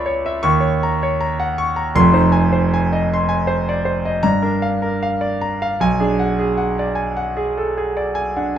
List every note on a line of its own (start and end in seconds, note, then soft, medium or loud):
0.00 0.39 C#2 medium
0.00 0.06 C#5 medium
0.00 0.46 D5 medium
0.00 0.26 E5 medium
0.00 0.46 B5 medium
0.00 0.43 C#6 loud
0.06 0.36 C#5 medium
0.26 0.44 E5 medium
0.43 1.91 D#2 medium
0.43 0.74 C#6 medium
0.60 0.92 C#5 medium
0.83 1.13 A#5 medium
1.03 1.32 C#5 medium
1.21 1.51 A#5 medium
1.40 1.69 F#5 medium
1.58 1.88 C#6 medium
1.76 1.95 A#5 medium
1.95 4.20 F1 medium
1.95 4.20 F2 medium
1.95 2.26 C6 medium
2.13 2.44 D#4 medium
2.13 2.45 C5 medium
2.32 2.64 G#5 medium
2.53 2.84 C5 medium
2.74 3.04 G#5 medium
2.93 3.23 D#5 medium
3.14 3.43 C6 medium
3.29 3.60 G#5 medium
3.47 3.78 C5 medium
3.69 3.87 D5 medium
3.85 4.16 C5 medium
4.05 4.24 D#5 medium
4.23 5.75 G2 medium
4.23 4.54 A#5 medium
4.42 4.74 D4 medium
4.42 4.74 A#4 medium
4.62 4.94 F5 medium
4.82 5.14 A#4 medium
5.03 5.34 F5 medium
5.21 5.53 D5 medium
5.41 5.72 A#5 medium
5.62 5.80 F5 medium
5.80 8.58 B1 medium
5.80 6.10 G#5 medium
6.00 6.30 D4 medium
6.00 6.29 G#4 medium
6.19 6.49 F#5 medium
6.39 6.69 G#4 medium
6.57 6.88 F#5 medium
6.79 7.09 D5 medium
6.95 7.27 G#5 medium
7.17 7.47 F#5 medium
7.37 7.67 G#4 medium
7.58 7.76 A4 soft
7.78 8.08 G#4 medium
7.97 8.28 D5 medium
8.15 8.48 G#5 medium
8.36 8.58 D4 soft
8.36 8.58 F#5 medium